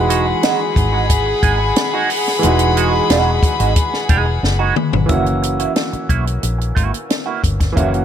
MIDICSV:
0, 0, Header, 1, 9, 480
1, 0, Start_track
1, 0, Tempo, 666667
1, 1750, Time_signature, 4, 2, 24, 8
1, 5794, End_track
2, 0, Start_track
2, 0, Title_t, "Glockenspiel"
2, 0, Program_c, 0, 9
2, 3666, Note_on_c, 0, 88, 63
2, 5545, Note_off_c, 0, 88, 0
2, 5794, End_track
3, 0, Start_track
3, 0, Title_t, "Violin section"
3, 0, Program_c, 1, 48
3, 0, Note_on_c, 1, 68, 84
3, 0, Note_on_c, 1, 78, 75
3, 0, Note_on_c, 1, 83, 89
3, 3641, Note_off_c, 1, 78, 0
3, 3641, Note_off_c, 1, 83, 0
3, 3642, Note_off_c, 1, 68, 0
3, 5794, End_track
4, 0, Start_track
4, 0, Title_t, "Clean electric guitar"
4, 0, Program_c, 2, 27
4, 66, Note_on_c, 2, 56, 71
4, 71, Note_on_c, 2, 63, 81
4, 75, Note_on_c, 2, 66, 78
4, 183, Note_off_c, 2, 56, 0
4, 186, Note_off_c, 2, 63, 0
4, 187, Note_off_c, 2, 66, 0
4, 309, Note_on_c, 2, 56, 72
4, 314, Note_on_c, 2, 63, 73
4, 319, Note_on_c, 2, 66, 82
4, 424, Note_off_c, 2, 56, 0
4, 427, Note_off_c, 2, 63, 0
4, 430, Note_off_c, 2, 66, 0
4, 666, Note_on_c, 2, 66, 49
4, 669, Note_on_c, 2, 63, 49
4, 674, Note_on_c, 2, 56, 48
4, 758, Note_off_c, 2, 66, 0
4, 760, Note_off_c, 2, 63, 0
4, 762, Note_off_c, 2, 56, 0
4, 1027, Note_on_c, 2, 56, 73
4, 1034, Note_on_c, 2, 63, 78
4, 1037, Note_on_c, 2, 68, 85
4, 1143, Note_off_c, 2, 56, 0
4, 1147, Note_off_c, 2, 63, 0
4, 1148, Note_off_c, 2, 68, 0
4, 1394, Note_on_c, 2, 66, 80
4, 1400, Note_on_c, 2, 63, 73
4, 1404, Note_on_c, 2, 56, 70
4, 1507, Note_off_c, 2, 56, 0
4, 1507, Note_off_c, 2, 66, 0
4, 1509, Note_off_c, 2, 63, 0
4, 1992, Note_on_c, 2, 56, 75
4, 1999, Note_on_c, 2, 63, 68
4, 2003, Note_on_c, 2, 66, 82
4, 2106, Note_off_c, 2, 56, 0
4, 2109, Note_off_c, 2, 63, 0
4, 2111, Note_off_c, 2, 66, 0
4, 2231, Note_on_c, 2, 56, 71
4, 2237, Note_on_c, 2, 63, 71
4, 2240, Note_on_c, 2, 66, 78
4, 2374, Note_off_c, 2, 56, 0
4, 2377, Note_off_c, 2, 63, 0
4, 2379, Note_off_c, 2, 66, 0
4, 2588, Note_on_c, 2, 66, 57
4, 2595, Note_on_c, 2, 63, 52
4, 2598, Note_on_c, 2, 56, 41
4, 2678, Note_off_c, 2, 66, 0
4, 2682, Note_off_c, 2, 63, 0
4, 2683, Note_off_c, 2, 56, 0
4, 2947, Note_on_c, 2, 56, 73
4, 2953, Note_on_c, 2, 63, 71
4, 2957, Note_on_c, 2, 68, 90
4, 3065, Note_off_c, 2, 68, 0
4, 3067, Note_off_c, 2, 63, 0
4, 3092, Note_off_c, 2, 56, 0
4, 3305, Note_on_c, 2, 66, 80
4, 3311, Note_on_c, 2, 63, 65
4, 3315, Note_on_c, 2, 56, 62
4, 3420, Note_off_c, 2, 56, 0
4, 3422, Note_off_c, 2, 66, 0
4, 3425, Note_off_c, 2, 63, 0
4, 3665, Note_on_c, 2, 58, 69
4, 3671, Note_on_c, 2, 64, 67
4, 3676, Note_on_c, 2, 66, 74
4, 3782, Note_off_c, 2, 58, 0
4, 3785, Note_off_c, 2, 64, 0
4, 3787, Note_off_c, 2, 66, 0
4, 4027, Note_on_c, 2, 66, 54
4, 4031, Note_on_c, 2, 64, 52
4, 4036, Note_on_c, 2, 58, 46
4, 4118, Note_off_c, 2, 66, 0
4, 4120, Note_off_c, 2, 64, 0
4, 4122, Note_off_c, 2, 58, 0
4, 4387, Note_on_c, 2, 58, 65
4, 4391, Note_on_c, 2, 64, 69
4, 4396, Note_on_c, 2, 66, 71
4, 4498, Note_off_c, 2, 66, 0
4, 4503, Note_off_c, 2, 58, 0
4, 4505, Note_off_c, 2, 64, 0
4, 4861, Note_on_c, 2, 58, 69
4, 4867, Note_on_c, 2, 64, 68
4, 4872, Note_on_c, 2, 66, 68
4, 4979, Note_off_c, 2, 66, 0
4, 4987, Note_off_c, 2, 64, 0
4, 5009, Note_off_c, 2, 58, 0
4, 5226, Note_on_c, 2, 66, 72
4, 5232, Note_on_c, 2, 64, 63
4, 5236, Note_on_c, 2, 58, 54
4, 5340, Note_off_c, 2, 58, 0
4, 5343, Note_off_c, 2, 66, 0
4, 5346, Note_off_c, 2, 64, 0
4, 5588, Note_on_c, 2, 58, 82
4, 5593, Note_on_c, 2, 64, 86
4, 5599, Note_on_c, 2, 66, 78
4, 5704, Note_off_c, 2, 58, 0
4, 5707, Note_off_c, 2, 64, 0
4, 5709, Note_off_c, 2, 66, 0
4, 5794, End_track
5, 0, Start_track
5, 0, Title_t, "Grand piano"
5, 0, Program_c, 3, 0
5, 0, Control_c, 3, 64, 127
5, 0, Note_on_c, 3, 52, 73
5, 0, Note_on_c, 3, 56, 67
5, 0, Note_on_c, 3, 63, 61
5, 0, Note_on_c, 3, 66, 82
5, 1708, Note_off_c, 3, 52, 0
5, 1722, Note_on_c, 3, 52, 73
5, 1726, Note_off_c, 3, 63, 0
5, 1732, Note_off_c, 3, 56, 0
5, 1736, Note_off_c, 3, 66, 0
5, 1743, Note_on_c, 3, 56, 66
5, 1760, Note_on_c, 3, 63, 61
5, 1778, Note_on_c, 3, 66, 78
5, 3626, Note_off_c, 3, 52, 0
5, 3637, Note_off_c, 3, 56, 0
5, 3642, Note_on_c, 3, 52, 65
5, 3646, Note_off_c, 3, 63, 0
5, 3654, Note_off_c, 3, 66, 0
5, 3661, Note_on_c, 3, 58, 62
5, 3675, Note_on_c, 3, 61, 62
5, 3679, Control_c, 3, 64, 0
5, 3696, Note_on_c, 3, 66, 72
5, 3805, Control_c, 3, 64, 127
5, 5548, Note_off_c, 3, 52, 0
5, 5557, Note_off_c, 3, 58, 0
5, 5562, Note_on_c, 3, 52, 67
5, 5564, Note_off_c, 3, 61, 0
5, 5575, Note_off_c, 3, 66, 0
5, 5585, Note_on_c, 3, 58, 62
5, 5603, Note_on_c, 3, 61, 58
5, 5619, Note_on_c, 3, 66, 75
5, 5794, Note_off_c, 3, 52, 0
5, 5794, Note_off_c, 3, 58, 0
5, 5794, Note_off_c, 3, 61, 0
5, 5794, Note_off_c, 3, 66, 0
5, 5794, End_track
6, 0, Start_track
6, 0, Title_t, "Fingered electric bass"
6, 0, Program_c, 4, 33
6, 0, Note_on_c, 4, 28, 102
6, 234, Note_off_c, 4, 28, 0
6, 548, Note_on_c, 4, 32, 88
6, 953, Note_off_c, 4, 32, 0
6, 1028, Note_on_c, 4, 32, 89
6, 1231, Note_off_c, 4, 32, 0
6, 1758, Note_on_c, 4, 28, 103
6, 2159, Note_off_c, 4, 28, 0
6, 2232, Note_on_c, 4, 28, 86
6, 2433, Note_off_c, 4, 28, 0
6, 2592, Note_on_c, 4, 32, 86
6, 2692, Note_off_c, 4, 32, 0
6, 2950, Note_on_c, 4, 28, 74
6, 3152, Note_off_c, 4, 28, 0
6, 3189, Note_on_c, 4, 30, 89
6, 3391, Note_off_c, 4, 30, 0
6, 3547, Note_on_c, 4, 31, 83
6, 3649, Note_off_c, 4, 31, 0
6, 3667, Note_on_c, 4, 30, 93
6, 4072, Note_off_c, 4, 30, 0
6, 4388, Note_on_c, 4, 35, 80
6, 4591, Note_off_c, 4, 35, 0
6, 4630, Note_on_c, 4, 34, 84
6, 4832, Note_off_c, 4, 34, 0
6, 4872, Note_on_c, 4, 32, 73
6, 4972, Note_off_c, 4, 32, 0
6, 5356, Note_on_c, 4, 31, 81
6, 5556, Note_off_c, 4, 31, 0
6, 5594, Note_on_c, 4, 30, 93
6, 5794, Note_off_c, 4, 30, 0
6, 5794, End_track
7, 0, Start_track
7, 0, Title_t, "Muted clean electric guitar strokes"
7, 547, Note_on_c, 9, 29, 37
7, 619, Note_off_c, 9, 29, 0
7, 792, Note_on_c, 9, 29, 45
7, 864, Note_off_c, 9, 29, 0
7, 911, Note_on_c, 9, 29, 44
7, 983, Note_off_c, 9, 29, 0
7, 1152, Note_on_c, 9, 29, 38
7, 1224, Note_off_c, 9, 29, 0
7, 1273, Note_on_c, 9, 29, 40
7, 1345, Note_off_c, 9, 29, 0
7, 1516, Note_on_c, 9, 29, 41
7, 1588, Note_off_c, 9, 29, 0
7, 1639, Note_on_c, 9, 29, 37
7, 1711, Note_off_c, 9, 29, 0
7, 2470, Note_on_c, 9, 29, 36
7, 2542, Note_off_c, 9, 29, 0
7, 2831, Note_on_c, 9, 29, 36
7, 2903, Note_off_c, 9, 29, 0
7, 3068, Note_on_c, 9, 29, 41
7, 3140, Note_off_c, 9, 29, 0
7, 3188, Note_on_c, 9, 29, 37
7, 3260, Note_off_c, 9, 29, 0
7, 3546, Note_on_c, 9, 29, 36
7, 3618, Note_off_c, 9, 29, 0
7, 3907, Note_on_c, 9, 29, 37
7, 3979, Note_off_c, 9, 29, 0
7, 4267, Note_on_c, 9, 29, 39
7, 4339, Note_off_c, 9, 29, 0
7, 4507, Note_on_c, 9, 29, 40
7, 4579, Note_off_c, 9, 29, 0
7, 4624, Note_on_c, 9, 29, 38
7, 4696, Note_off_c, 9, 29, 0
7, 4742, Note_on_c, 9, 29, 44
7, 4814, Note_off_c, 9, 29, 0
7, 4988, Note_on_c, 9, 29, 39
7, 5060, Note_off_c, 9, 29, 0
7, 5108, Note_on_c, 9, 29, 34
7, 5180, Note_off_c, 9, 29, 0
7, 5349, Note_on_c, 9, 29, 29
7, 5421, Note_off_c, 9, 29, 0
7, 5470, Note_on_c, 9, 29, 40
7, 5542, Note_off_c, 9, 29, 0
7, 5794, End_track
8, 0, Start_track
8, 0, Title_t, "Muted fingered electric bass strokes"
8, 4271, Note_on_c, 9, 29, 43
8, 4343, Note_off_c, 9, 29, 0
8, 5794, End_track
9, 0, Start_track
9, 0, Title_t, "Drums"
9, 73, Note_on_c, 9, 42, 74
9, 145, Note_off_c, 9, 42, 0
9, 310, Note_on_c, 9, 42, 80
9, 314, Note_on_c, 9, 38, 110
9, 382, Note_off_c, 9, 42, 0
9, 386, Note_off_c, 9, 38, 0
9, 549, Note_on_c, 9, 36, 93
9, 553, Note_on_c, 9, 42, 74
9, 621, Note_off_c, 9, 36, 0
9, 625, Note_off_c, 9, 42, 0
9, 790, Note_on_c, 9, 42, 97
9, 791, Note_on_c, 9, 36, 81
9, 862, Note_off_c, 9, 42, 0
9, 863, Note_off_c, 9, 36, 0
9, 1028, Note_on_c, 9, 42, 71
9, 1029, Note_on_c, 9, 36, 91
9, 1100, Note_off_c, 9, 42, 0
9, 1101, Note_off_c, 9, 36, 0
9, 1268, Note_on_c, 9, 42, 95
9, 1273, Note_on_c, 9, 38, 120
9, 1340, Note_off_c, 9, 42, 0
9, 1345, Note_off_c, 9, 38, 0
9, 1510, Note_on_c, 9, 46, 95
9, 1582, Note_off_c, 9, 46, 0
9, 1639, Note_on_c, 9, 38, 36
9, 1711, Note_off_c, 9, 38, 0
9, 1749, Note_on_c, 9, 42, 78
9, 1821, Note_off_c, 9, 42, 0
9, 1864, Note_on_c, 9, 42, 51
9, 1936, Note_off_c, 9, 42, 0
9, 1993, Note_on_c, 9, 42, 76
9, 2065, Note_off_c, 9, 42, 0
9, 2231, Note_on_c, 9, 42, 89
9, 2236, Note_on_c, 9, 38, 123
9, 2303, Note_off_c, 9, 42, 0
9, 2308, Note_off_c, 9, 38, 0
9, 2467, Note_on_c, 9, 36, 96
9, 2471, Note_on_c, 9, 42, 72
9, 2539, Note_off_c, 9, 36, 0
9, 2543, Note_off_c, 9, 42, 0
9, 2590, Note_on_c, 9, 42, 49
9, 2662, Note_off_c, 9, 42, 0
9, 2707, Note_on_c, 9, 42, 88
9, 2710, Note_on_c, 9, 36, 87
9, 2779, Note_off_c, 9, 42, 0
9, 2782, Note_off_c, 9, 36, 0
9, 2834, Note_on_c, 9, 38, 33
9, 2906, Note_off_c, 9, 38, 0
9, 2945, Note_on_c, 9, 42, 73
9, 2947, Note_on_c, 9, 36, 88
9, 3017, Note_off_c, 9, 42, 0
9, 3019, Note_off_c, 9, 36, 0
9, 3198, Note_on_c, 9, 38, 55
9, 3270, Note_off_c, 9, 38, 0
9, 3430, Note_on_c, 9, 45, 91
9, 3502, Note_off_c, 9, 45, 0
9, 3552, Note_on_c, 9, 43, 93
9, 3624, Note_off_c, 9, 43, 0
9, 3665, Note_on_c, 9, 42, 80
9, 3668, Note_on_c, 9, 36, 111
9, 3737, Note_off_c, 9, 42, 0
9, 3740, Note_off_c, 9, 36, 0
9, 3789, Note_on_c, 9, 42, 33
9, 3861, Note_off_c, 9, 42, 0
9, 3912, Note_on_c, 9, 42, 71
9, 3984, Note_off_c, 9, 42, 0
9, 4028, Note_on_c, 9, 42, 45
9, 4100, Note_off_c, 9, 42, 0
9, 4145, Note_on_c, 9, 42, 79
9, 4150, Note_on_c, 9, 38, 101
9, 4217, Note_off_c, 9, 42, 0
9, 4222, Note_off_c, 9, 38, 0
9, 4271, Note_on_c, 9, 42, 32
9, 4343, Note_off_c, 9, 42, 0
9, 4388, Note_on_c, 9, 36, 78
9, 4390, Note_on_c, 9, 42, 62
9, 4460, Note_off_c, 9, 36, 0
9, 4462, Note_off_c, 9, 42, 0
9, 4516, Note_on_c, 9, 42, 45
9, 4588, Note_off_c, 9, 42, 0
9, 4629, Note_on_c, 9, 42, 88
9, 4701, Note_off_c, 9, 42, 0
9, 4762, Note_on_c, 9, 42, 33
9, 4834, Note_off_c, 9, 42, 0
9, 4871, Note_on_c, 9, 36, 82
9, 4875, Note_on_c, 9, 42, 72
9, 4943, Note_off_c, 9, 36, 0
9, 4947, Note_off_c, 9, 42, 0
9, 4997, Note_on_c, 9, 42, 49
9, 5069, Note_off_c, 9, 42, 0
9, 5114, Note_on_c, 9, 42, 82
9, 5118, Note_on_c, 9, 38, 104
9, 5186, Note_off_c, 9, 42, 0
9, 5190, Note_off_c, 9, 38, 0
9, 5354, Note_on_c, 9, 36, 80
9, 5356, Note_on_c, 9, 42, 86
9, 5426, Note_off_c, 9, 36, 0
9, 5428, Note_off_c, 9, 42, 0
9, 5475, Note_on_c, 9, 36, 84
9, 5476, Note_on_c, 9, 42, 54
9, 5481, Note_on_c, 9, 38, 36
9, 5547, Note_off_c, 9, 36, 0
9, 5548, Note_off_c, 9, 42, 0
9, 5553, Note_off_c, 9, 38, 0
9, 5594, Note_on_c, 9, 36, 101
9, 5595, Note_on_c, 9, 42, 83
9, 5666, Note_off_c, 9, 36, 0
9, 5667, Note_off_c, 9, 42, 0
9, 5715, Note_on_c, 9, 42, 33
9, 5787, Note_off_c, 9, 42, 0
9, 5794, End_track
0, 0, End_of_file